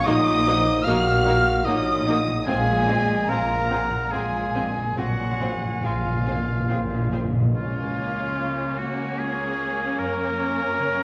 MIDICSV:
0, 0, Header, 1, 12, 480
1, 0, Start_track
1, 0, Tempo, 805369
1, 39, Time_signature, 3, 2, 24, 8
1, 1960, Tempo, 825309
1, 2440, Tempo, 857143
1, 4360, Tempo, 807537
1, 6434, End_track
2, 0, Start_track
2, 0, Title_t, "Flute section"
2, 0, Program_c, 0, 73
2, 34, Note_on_c, 0, 87, 112
2, 510, Note_off_c, 0, 87, 0
2, 514, Note_on_c, 0, 89, 92
2, 988, Note_on_c, 0, 87, 90
2, 991, Note_off_c, 0, 89, 0
2, 1290, Note_off_c, 0, 87, 0
2, 1469, Note_on_c, 0, 80, 91
2, 1948, Note_off_c, 0, 80, 0
2, 1955, Note_on_c, 0, 82, 72
2, 2438, Note_off_c, 0, 82, 0
2, 2438, Note_on_c, 0, 80, 68
2, 2919, Note_off_c, 0, 80, 0
2, 2919, Note_on_c, 0, 78, 67
2, 3402, Note_off_c, 0, 78, 0
2, 3408, Note_on_c, 0, 77, 49
2, 4125, Note_off_c, 0, 77, 0
2, 6434, End_track
3, 0, Start_track
3, 0, Title_t, "Violin section"
3, 0, Program_c, 1, 48
3, 34, Note_on_c, 1, 87, 127
3, 509, Note_off_c, 1, 87, 0
3, 509, Note_on_c, 1, 89, 107
3, 989, Note_off_c, 1, 89, 0
3, 991, Note_on_c, 1, 87, 106
3, 1474, Note_off_c, 1, 87, 0
3, 1476, Note_on_c, 1, 80, 108
3, 1952, Note_off_c, 1, 80, 0
3, 1955, Note_on_c, 1, 82, 90
3, 2438, Note_off_c, 1, 82, 0
3, 2443, Note_on_c, 1, 80, 75
3, 2922, Note_off_c, 1, 80, 0
3, 2923, Note_on_c, 1, 78, 82
3, 3394, Note_off_c, 1, 78, 0
3, 3400, Note_on_c, 1, 77, 62
3, 4121, Note_off_c, 1, 77, 0
3, 6434, End_track
4, 0, Start_track
4, 0, Title_t, "Clarinet"
4, 0, Program_c, 2, 71
4, 38, Note_on_c, 2, 75, 82
4, 283, Note_on_c, 2, 72, 76
4, 292, Note_off_c, 2, 75, 0
4, 516, Note_on_c, 2, 70, 67
4, 524, Note_off_c, 2, 72, 0
4, 998, Note_on_c, 2, 73, 77
4, 1007, Note_off_c, 2, 70, 0
4, 1237, Note_on_c, 2, 75, 67
4, 1246, Note_off_c, 2, 73, 0
4, 1470, Note_off_c, 2, 75, 0
4, 1473, Note_on_c, 2, 77, 79
4, 1720, Note_on_c, 2, 75, 70
4, 1729, Note_off_c, 2, 77, 0
4, 1964, Note_on_c, 2, 77, 67
4, 1973, Note_off_c, 2, 75, 0
4, 2200, Note_on_c, 2, 78, 66
4, 2209, Note_off_c, 2, 77, 0
4, 2440, Note_on_c, 2, 77, 62
4, 2449, Note_off_c, 2, 78, 0
4, 2753, Note_off_c, 2, 77, 0
4, 2919, Note_on_c, 2, 80, 65
4, 4100, Note_off_c, 2, 80, 0
4, 6434, End_track
5, 0, Start_track
5, 0, Title_t, "Oboe"
5, 0, Program_c, 3, 68
5, 37, Note_on_c, 3, 75, 107
5, 502, Note_on_c, 3, 77, 110
5, 511, Note_off_c, 3, 75, 0
5, 986, Note_on_c, 3, 75, 88
5, 995, Note_off_c, 3, 77, 0
5, 1305, Note_off_c, 3, 75, 0
5, 1466, Note_on_c, 3, 68, 92
5, 1962, Note_on_c, 3, 70, 85
5, 1970, Note_off_c, 3, 68, 0
5, 2439, Note_on_c, 3, 68, 68
5, 2448, Note_off_c, 3, 70, 0
5, 2920, Note_off_c, 3, 68, 0
5, 2928, Note_on_c, 3, 66, 70
5, 3397, Note_off_c, 3, 66, 0
5, 3414, Note_on_c, 3, 65, 52
5, 4114, Note_off_c, 3, 65, 0
5, 4361, Note_on_c, 3, 65, 71
5, 5094, Note_on_c, 3, 66, 62
5, 5102, Note_off_c, 3, 65, 0
5, 5338, Note_on_c, 3, 68, 65
5, 5347, Note_off_c, 3, 66, 0
5, 5814, Note_on_c, 3, 70, 86
5, 5823, Note_off_c, 3, 68, 0
5, 6434, Note_off_c, 3, 70, 0
5, 6434, End_track
6, 0, Start_track
6, 0, Title_t, "Violin section"
6, 0, Program_c, 4, 48
6, 41, Note_on_c, 4, 66, 74
6, 44, Note_on_c, 4, 70, 75
6, 89, Note_off_c, 4, 66, 0
6, 91, Note_off_c, 4, 70, 0
6, 284, Note_on_c, 4, 66, 61
6, 284, Note_on_c, 4, 70, 65
6, 332, Note_off_c, 4, 66, 0
6, 332, Note_off_c, 4, 70, 0
6, 528, Note_on_c, 4, 66, 71
6, 530, Note_on_c, 4, 70, 68
6, 576, Note_off_c, 4, 66, 0
6, 578, Note_off_c, 4, 70, 0
6, 759, Note_on_c, 4, 66, 63
6, 764, Note_on_c, 4, 70, 60
6, 807, Note_off_c, 4, 66, 0
6, 811, Note_off_c, 4, 70, 0
6, 1003, Note_on_c, 4, 70, 64
6, 1008, Note_on_c, 4, 66, 62
6, 1051, Note_off_c, 4, 70, 0
6, 1056, Note_off_c, 4, 66, 0
6, 1241, Note_on_c, 4, 66, 61
6, 1242, Note_on_c, 4, 70, 58
6, 1289, Note_off_c, 4, 66, 0
6, 1290, Note_off_c, 4, 70, 0
6, 1481, Note_on_c, 4, 68, 67
6, 1484, Note_on_c, 4, 65, 68
6, 1529, Note_off_c, 4, 68, 0
6, 1532, Note_off_c, 4, 65, 0
6, 1718, Note_on_c, 4, 65, 56
6, 1721, Note_on_c, 4, 68, 56
6, 1766, Note_off_c, 4, 65, 0
6, 1769, Note_off_c, 4, 68, 0
6, 1969, Note_on_c, 4, 68, 54
6, 1973, Note_on_c, 4, 65, 54
6, 2016, Note_off_c, 4, 68, 0
6, 2019, Note_off_c, 4, 65, 0
6, 2210, Note_on_c, 4, 65, 52
6, 2212, Note_on_c, 4, 68, 49
6, 2256, Note_off_c, 4, 65, 0
6, 2259, Note_off_c, 4, 68, 0
6, 2451, Note_on_c, 4, 65, 50
6, 2452, Note_on_c, 4, 68, 54
6, 2496, Note_off_c, 4, 65, 0
6, 2497, Note_off_c, 4, 68, 0
6, 2681, Note_on_c, 4, 68, 49
6, 2682, Note_on_c, 4, 65, 47
6, 2725, Note_off_c, 4, 68, 0
6, 2727, Note_off_c, 4, 65, 0
6, 2920, Note_on_c, 4, 68, 48
6, 2921, Note_on_c, 4, 65, 47
6, 2965, Note_off_c, 4, 65, 0
6, 2965, Note_off_c, 4, 68, 0
6, 3166, Note_on_c, 4, 68, 42
6, 3167, Note_on_c, 4, 65, 44
6, 3211, Note_off_c, 4, 68, 0
6, 3212, Note_off_c, 4, 65, 0
6, 3404, Note_on_c, 4, 68, 46
6, 3409, Note_on_c, 4, 65, 45
6, 3449, Note_off_c, 4, 68, 0
6, 3454, Note_off_c, 4, 65, 0
6, 3641, Note_on_c, 4, 65, 43
6, 3642, Note_on_c, 4, 68, 43
6, 3686, Note_off_c, 4, 65, 0
6, 3687, Note_off_c, 4, 68, 0
6, 3883, Note_on_c, 4, 65, 47
6, 3887, Note_on_c, 4, 68, 50
6, 3928, Note_off_c, 4, 65, 0
6, 3932, Note_off_c, 4, 68, 0
6, 4125, Note_on_c, 4, 68, 41
6, 4127, Note_on_c, 4, 65, 38
6, 4170, Note_off_c, 4, 68, 0
6, 4172, Note_off_c, 4, 65, 0
6, 4368, Note_on_c, 4, 65, 56
6, 5071, Note_off_c, 4, 65, 0
6, 5088, Note_on_c, 4, 66, 50
6, 5330, Note_off_c, 4, 66, 0
6, 5330, Note_on_c, 4, 68, 61
6, 5806, Note_on_c, 4, 70, 64
6, 5808, Note_off_c, 4, 68, 0
6, 6434, Note_off_c, 4, 70, 0
6, 6434, End_track
7, 0, Start_track
7, 0, Title_t, "Harp"
7, 0, Program_c, 5, 46
7, 0, Note_on_c, 5, 54, 63
7, 0, Note_on_c, 5, 58, 68
7, 0, Note_on_c, 5, 66, 65
7, 0, Note_on_c, 5, 70, 79
7, 0, Note_on_c, 5, 75, 76
7, 0, Note_on_c, 5, 82, 74
7, 37, Note_on_c, 5, 46, 77
7, 148, Note_off_c, 5, 58, 0
7, 155, Note_on_c, 5, 58, 57
7, 263, Note_off_c, 5, 66, 0
7, 270, Note_on_c, 5, 66, 66
7, 383, Note_off_c, 5, 70, 0
7, 390, Note_on_c, 5, 70, 62
7, 502, Note_off_c, 5, 66, 0
7, 509, Note_on_c, 5, 66, 64
7, 742, Note_off_c, 5, 82, 0
7, 749, Note_on_c, 5, 82, 69
7, 865, Note_on_c, 5, 78, 63
7, 984, Note_off_c, 5, 70, 0
7, 991, Note_on_c, 5, 70, 64
7, 1102, Note_off_c, 5, 66, 0
7, 1110, Note_on_c, 5, 66, 58
7, 1222, Note_off_c, 5, 58, 0
7, 1229, Note_on_c, 5, 58, 59
7, 1343, Note_off_c, 5, 54, 0
7, 1350, Note_on_c, 5, 54, 55
7, 1460, Note_off_c, 5, 46, 0
7, 1467, Note_on_c, 5, 46, 71
7, 1489, Note_off_c, 5, 75, 0
7, 1490, Note_off_c, 5, 78, 0
7, 1491, Note_off_c, 5, 54, 0
7, 1491, Note_off_c, 5, 58, 0
7, 1492, Note_off_c, 5, 66, 0
7, 1492, Note_off_c, 5, 82, 0
7, 1493, Note_off_c, 5, 70, 0
7, 1839, Note_on_c, 5, 68, 53
7, 1957, Note_on_c, 5, 72, 54
7, 2199, Note_on_c, 5, 80, 53
7, 2432, Note_off_c, 5, 72, 0
7, 2439, Note_on_c, 5, 72, 51
7, 2553, Note_off_c, 5, 68, 0
7, 2559, Note_on_c, 5, 68, 45
7, 2914, Note_off_c, 5, 46, 0
7, 2921, Note_on_c, 5, 46, 49
7, 3044, Note_on_c, 5, 60, 40
7, 3282, Note_off_c, 5, 68, 0
7, 3289, Note_on_c, 5, 68, 40
7, 3405, Note_off_c, 5, 72, 0
7, 3411, Note_on_c, 5, 72, 42
7, 3526, Note_on_c, 5, 77, 46
7, 3639, Note_off_c, 5, 80, 0
7, 3646, Note_on_c, 5, 80, 45
7, 3757, Note_off_c, 5, 77, 0
7, 3764, Note_on_c, 5, 77, 44
7, 3878, Note_off_c, 5, 72, 0
7, 3885, Note_on_c, 5, 72, 46
7, 3999, Note_off_c, 5, 68, 0
7, 4005, Note_on_c, 5, 68, 37
7, 4363, Note_on_c, 5, 49, 49
7, 4379, Note_off_c, 5, 46, 0
7, 4380, Note_off_c, 5, 60, 0
7, 4380, Note_off_c, 5, 72, 0
7, 4528, Note_on_c, 5, 70, 40
7, 4689, Note_on_c, 5, 61, 36
7, 4852, Note_on_c, 5, 56, 34
7, 5003, Note_off_c, 5, 61, 0
7, 5010, Note_on_c, 5, 61, 41
7, 5166, Note_off_c, 5, 56, 0
7, 5173, Note_on_c, 5, 56, 36
7, 5334, Note_on_c, 5, 65, 40
7, 5486, Note_off_c, 5, 61, 0
7, 5493, Note_on_c, 5, 61, 39
7, 5645, Note_off_c, 5, 56, 0
7, 5652, Note_on_c, 5, 56, 37
7, 5812, Note_on_c, 5, 42, 48
7, 5828, Note_off_c, 5, 77, 0
7, 5829, Note_off_c, 5, 49, 0
7, 5829, Note_off_c, 5, 56, 0
7, 5829, Note_off_c, 5, 65, 0
7, 5829, Note_off_c, 5, 68, 0
7, 5829, Note_off_c, 5, 80, 0
7, 5963, Note_off_c, 5, 70, 0
7, 5970, Note_on_c, 5, 70, 40
7, 6119, Note_off_c, 5, 61, 0
7, 6126, Note_on_c, 5, 61, 37
7, 6285, Note_on_c, 5, 49, 38
7, 6430, Note_off_c, 5, 61, 0
7, 6434, Note_off_c, 5, 42, 0
7, 6434, Note_off_c, 5, 49, 0
7, 6434, Note_off_c, 5, 70, 0
7, 6434, End_track
8, 0, Start_track
8, 0, Title_t, "Viola section"
8, 0, Program_c, 6, 48
8, 37, Note_on_c, 6, 58, 77
8, 38, Note_on_c, 6, 63, 80
8, 85, Note_off_c, 6, 58, 0
8, 86, Note_off_c, 6, 63, 0
8, 280, Note_on_c, 6, 58, 64
8, 281, Note_on_c, 6, 63, 63
8, 328, Note_off_c, 6, 58, 0
8, 328, Note_off_c, 6, 63, 0
8, 516, Note_on_c, 6, 58, 68
8, 516, Note_on_c, 6, 63, 65
8, 563, Note_off_c, 6, 58, 0
8, 563, Note_off_c, 6, 63, 0
8, 749, Note_on_c, 6, 58, 59
8, 749, Note_on_c, 6, 63, 62
8, 796, Note_off_c, 6, 63, 0
8, 797, Note_off_c, 6, 58, 0
8, 991, Note_on_c, 6, 58, 61
8, 991, Note_on_c, 6, 63, 58
8, 1038, Note_off_c, 6, 58, 0
8, 1039, Note_off_c, 6, 63, 0
8, 1232, Note_on_c, 6, 58, 61
8, 1232, Note_on_c, 6, 63, 62
8, 1279, Note_off_c, 6, 58, 0
8, 1280, Note_off_c, 6, 63, 0
8, 1470, Note_on_c, 6, 60, 67
8, 1471, Note_off_c, 6, 60, 0
8, 1471, Note_on_c, 6, 60, 73
8, 1519, Note_off_c, 6, 60, 0
8, 1716, Note_on_c, 6, 60, 55
8, 1719, Note_off_c, 6, 60, 0
8, 1719, Note_on_c, 6, 60, 55
8, 1767, Note_off_c, 6, 60, 0
8, 1963, Note_on_c, 6, 60, 53
8, 1965, Note_off_c, 6, 60, 0
8, 1965, Note_on_c, 6, 60, 53
8, 2012, Note_off_c, 6, 60, 0
8, 2203, Note_on_c, 6, 60, 51
8, 2204, Note_off_c, 6, 60, 0
8, 2204, Note_on_c, 6, 60, 49
8, 2251, Note_off_c, 6, 60, 0
8, 2445, Note_on_c, 6, 60, 49
8, 2447, Note_off_c, 6, 60, 0
8, 2447, Note_on_c, 6, 60, 54
8, 2492, Note_off_c, 6, 60, 0
8, 2683, Note_on_c, 6, 60, 48
8, 2728, Note_off_c, 6, 60, 0
8, 2923, Note_on_c, 6, 60, 51
8, 2924, Note_off_c, 6, 60, 0
8, 2924, Note_on_c, 6, 60, 49
8, 2968, Note_off_c, 6, 60, 0
8, 3165, Note_on_c, 6, 60, 43
8, 3167, Note_off_c, 6, 60, 0
8, 3167, Note_on_c, 6, 60, 43
8, 3212, Note_off_c, 6, 60, 0
8, 3405, Note_on_c, 6, 60, 43
8, 3406, Note_off_c, 6, 60, 0
8, 3406, Note_on_c, 6, 60, 44
8, 3451, Note_off_c, 6, 60, 0
8, 3646, Note_on_c, 6, 60, 38
8, 3649, Note_off_c, 6, 60, 0
8, 3649, Note_on_c, 6, 60, 41
8, 3694, Note_off_c, 6, 60, 0
8, 3884, Note_on_c, 6, 60, 44
8, 3929, Note_off_c, 6, 60, 0
8, 4126, Note_on_c, 6, 60, 44
8, 4129, Note_off_c, 6, 60, 0
8, 4129, Note_on_c, 6, 60, 42
8, 4173, Note_off_c, 6, 60, 0
8, 4359, Note_on_c, 6, 58, 48
8, 4361, Note_on_c, 6, 61, 54
8, 6434, Note_off_c, 6, 58, 0
8, 6434, Note_off_c, 6, 61, 0
8, 6434, End_track
9, 0, Start_track
9, 0, Title_t, "French horn section"
9, 0, Program_c, 7, 60
9, 38, Note_on_c, 7, 63, 112
9, 502, Note_off_c, 7, 63, 0
9, 503, Note_on_c, 7, 66, 105
9, 983, Note_on_c, 7, 63, 84
9, 986, Note_off_c, 7, 66, 0
9, 1469, Note_on_c, 7, 56, 86
9, 1470, Note_off_c, 7, 63, 0
9, 1958, Note_off_c, 7, 56, 0
9, 1960, Note_on_c, 7, 58, 75
9, 2438, Note_on_c, 7, 56, 71
9, 2440, Note_off_c, 7, 58, 0
9, 2827, Note_off_c, 7, 56, 0
9, 2922, Note_on_c, 7, 54, 69
9, 3394, Note_off_c, 7, 54, 0
9, 3412, Note_on_c, 7, 53, 52
9, 4127, Note_off_c, 7, 53, 0
9, 6434, End_track
10, 0, Start_track
10, 0, Title_t, "Cello section"
10, 0, Program_c, 8, 48
10, 42, Note_on_c, 8, 46, 91
10, 458, Note_off_c, 8, 46, 0
10, 510, Note_on_c, 8, 46, 80
10, 932, Note_off_c, 8, 46, 0
10, 991, Note_on_c, 8, 46, 80
10, 1417, Note_off_c, 8, 46, 0
10, 1479, Note_on_c, 8, 46, 81
10, 1905, Note_off_c, 8, 46, 0
10, 1966, Note_on_c, 8, 46, 71
10, 2386, Note_off_c, 8, 46, 0
10, 2449, Note_on_c, 8, 46, 63
10, 2867, Note_off_c, 8, 46, 0
10, 2927, Note_on_c, 8, 46, 63
10, 3349, Note_off_c, 8, 46, 0
10, 3406, Note_on_c, 8, 46, 57
10, 3827, Note_off_c, 8, 46, 0
10, 3885, Note_on_c, 8, 46, 62
10, 4306, Note_off_c, 8, 46, 0
10, 4366, Note_on_c, 8, 37, 48
10, 5788, Note_off_c, 8, 37, 0
10, 5814, Note_on_c, 8, 42, 54
10, 6434, Note_off_c, 8, 42, 0
10, 6434, End_track
11, 0, Start_track
11, 0, Title_t, "Timpani"
11, 0, Program_c, 10, 47
11, 1476, Note_on_c, 10, 46, 35
11, 1503, Note_off_c, 10, 46, 0
11, 1511, Note_on_c, 10, 46, 37
11, 1546, Note_off_c, 10, 46, 0
11, 1553, Note_on_c, 10, 46, 36
11, 1592, Note_off_c, 10, 46, 0
11, 1599, Note_on_c, 10, 46, 39
11, 1632, Note_off_c, 10, 46, 0
11, 1779, Note_on_c, 10, 46, 41
11, 1821, Note_off_c, 10, 46, 0
11, 1828, Note_on_c, 10, 46, 40
11, 1868, Note_off_c, 10, 46, 0
11, 1875, Note_on_c, 10, 46, 37
11, 1909, Note_off_c, 10, 46, 0
11, 1916, Note_on_c, 10, 46, 38
11, 1959, Note_off_c, 10, 46, 0
11, 1966, Note_on_c, 10, 46, 37
11, 2003, Note_off_c, 10, 46, 0
11, 2010, Note_on_c, 10, 46, 42
11, 2050, Note_off_c, 10, 46, 0
11, 2057, Note_on_c, 10, 46, 38
11, 2095, Note_off_c, 10, 46, 0
11, 2102, Note_on_c, 10, 46, 43
11, 2133, Note_off_c, 10, 46, 0
11, 2140, Note_on_c, 10, 46, 47
11, 2179, Note_off_c, 10, 46, 0
11, 2186, Note_on_c, 10, 46, 46
11, 2221, Note_off_c, 10, 46, 0
11, 2274, Note_on_c, 10, 46, 42
11, 2311, Note_off_c, 10, 46, 0
11, 2318, Note_on_c, 10, 46, 45
11, 2355, Note_off_c, 10, 46, 0
11, 2362, Note_on_c, 10, 46, 46
11, 2401, Note_off_c, 10, 46, 0
11, 2408, Note_on_c, 10, 46, 47
11, 2450, Note_off_c, 10, 46, 0
11, 2457, Note_on_c, 10, 46, 45
11, 2496, Note_off_c, 10, 46, 0
11, 2502, Note_on_c, 10, 46, 47
11, 2536, Note_off_c, 10, 46, 0
11, 2543, Note_on_c, 10, 46, 52
11, 2584, Note_off_c, 10, 46, 0
11, 2590, Note_on_c, 10, 46, 49
11, 2630, Note_off_c, 10, 46, 0
11, 2636, Note_on_c, 10, 46, 51
11, 2673, Note_off_c, 10, 46, 0
11, 2679, Note_on_c, 10, 46, 50
11, 2714, Note_off_c, 10, 46, 0
11, 2721, Note_on_c, 10, 46, 53
11, 2759, Note_off_c, 10, 46, 0
11, 2766, Note_on_c, 10, 46, 54
11, 2801, Note_off_c, 10, 46, 0
11, 2808, Note_on_c, 10, 46, 58
11, 2844, Note_off_c, 10, 46, 0
11, 2851, Note_on_c, 10, 46, 58
11, 2891, Note_off_c, 10, 46, 0
11, 2898, Note_on_c, 10, 46, 59
11, 2936, Note_off_c, 10, 46, 0
11, 2943, Note_on_c, 10, 46, 60
11, 2980, Note_off_c, 10, 46, 0
11, 2987, Note_on_c, 10, 46, 60
11, 3025, Note_off_c, 10, 46, 0
11, 3032, Note_on_c, 10, 46, 56
11, 3068, Note_off_c, 10, 46, 0
11, 3075, Note_on_c, 10, 46, 57
11, 3110, Note_off_c, 10, 46, 0
11, 3117, Note_on_c, 10, 46, 62
11, 3154, Note_off_c, 10, 46, 0
11, 3161, Note_on_c, 10, 46, 64
11, 3199, Note_off_c, 10, 46, 0
11, 3206, Note_on_c, 10, 46, 67
11, 3246, Note_off_c, 10, 46, 0
11, 3252, Note_on_c, 10, 46, 70
11, 3294, Note_off_c, 10, 46, 0
11, 3301, Note_on_c, 10, 46, 64
11, 3333, Note_off_c, 10, 46, 0
11, 3340, Note_on_c, 10, 46, 64
11, 3380, Note_off_c, 10, 46, 0
11, 3387, Note_on_c, 10, 46, 64
11, 3425, Note_off_c, 10, 46, 0
11, 3431, Note_on_c, 10, 46, 60
11, 3472, Note_off_c, 10, 46, 0
11, 3479, Note_on_c, 10, 46, 70
11, 3518, Note_off_c, 10, 46, 0
11, 3525, Note_on_c, 10, 46, 72
11, 3566, Note_off_c, 10, 46, 0
11, 3573, Note_on_c, 10, 46, 73
11, 3605, Note_off_c, 10, 46, 0
11, 3611, Note_on_c, 10, 46, 74
11, 3650, Note_off_c, 10, 46, 0
11, 3657, Note_on_c, 10, 46, 74
11, 3692, Note_off_c, 10, 46, 0
11, 3699, Note_on_c, 10, 46, 77
11, 3737, Note_off_c, 10, 46, 0
11, 3744, Note_on_c, 10, 46, 82
11, 3786, Note_off_c, 10, 46, 0
11, 3796, Note_on_c, 10, 46, 76
11, 3827, Note_off_c, 10, 46, 0
11, 3833, Note_on_c, 10, 46, 79
11, 3875, Note_off_c, 10, 46, 0
11, 3881, Note_on_c, 10, 46, 81
11, 3922, Note_off_c, 10, 46, 0
11, 3929, Note_on_c, 10, 46, 84
11, 3962, Note_off_c, 10, 46, 0
11, 3969, Note_on_c, 10, 46, 82
11, 4007, Note_off_c, 10, 46, 0
11, 4014, Note_on_c, 10, 46, 90
11, 4055, Note_off_c, 10, 46, 0
11, 4062, Note_on_c, 10, 46, 87
11, 4101, Note_off_c, 10, 46, 0
11, 4108, Note_on_c, 10, 46, 85
11, 4142, Note_off_c, 10, 46, 0
11, 4149, Note_on_c, 10, 46, 86
11, 4189, Note_off_c, 10, 46, 0
11, 4195, Note_on_c, 10, 46, 89
11, 4230, Note_off_c, 10, 46, 0
11, 4237, Note_on_c, 10, 46, 93
11, 4277, Note_off_c, 10, 46, 0
11, 4284, Note_on_c, 10, 46, 94
11, 4322, Note_off_c, 10, 46, 0
11, 6434, End_track
12, 0, Start_track
12, 0, Title_t, "Double bass section"
12, 0, Program_c, 11, 48
12, 42, Note_on_c, 11, 34, 88
12, 457, Note_off_c, 11, 34, 0
12, 514, Note_on_c, 11, 34, 91
12, 934, Note_off_c, 11, 34, 0
12, 997, Note_on_c, 11, 34, 79
12, 1420, Note_off_c, 11, 34, 0
12, 1480, Note_on_c, 11, 34, 82
12, 1906, Note_off_c, 11, 34, 0
12, 1969, Note_on_c, 11, 34, 75
12, 2387, Note_off_c, 11, 34, 0
12, 2448, Note_on_c, 11, 34, 64
12, 2867, Note_off_c, 11, 34, 0
12, 2924, Note_on_c, 11, 34, 57
12, 3347, Note_off_c, 11, 34, 0
12, 3410, Note_on_c, 11, 34, 59
12, 3829, Note_off_c, 11, 34, 0
12, 3889, Note_on_c, 11, 34, 56
12, 4308, Note_off_c, 11, 34, 0
12, 6434, End_track
0, 0, End_of_file